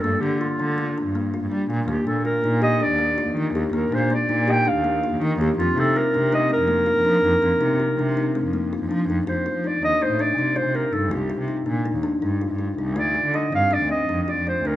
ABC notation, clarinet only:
X:1
M:5/4
L:1/16
Q:1/4=163
K:Fmix
V:1 name="Clarinet"
A2 G2 F8 z8 | G2 A2 B4 e2 d6 z4 | B2 c2 d4 g2 f6 z4 | F2 A2 B4 e2 B8- B2- |
B16 z4 | c4 d2 e2 c2 d4 c2 B2 A2 | G4 z16 | d4 e2 f2 d2 e3- e/2 e/2 d2 c2 B2 |]